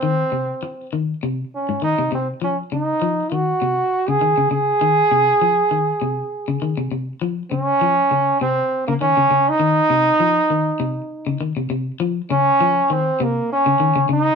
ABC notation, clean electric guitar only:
X:1
M:4/4
L:1/16
Q:"Swing 16ths" 1/4=100
K:Fphr
V:1 name="Clean electric guitar" clef=bass
E,2 C,2 z2 E,2 C,2 z A,, E, C, C,2 | F,2 D,2 F,2 E,2 C,2 z D, E, D, D,2 | E,2 C,2 F,2 E,2 C,2 z D, E, C, C,2 | F,2 D,2 F,2 D,2 C,2 z D, E, D, D,2 |
E,2 C,2 F,2 E,2 C,2 z D, E, C, C,2 | F,2 D,2 F,2 E,2 C,2 z D, E, D, D,2 |]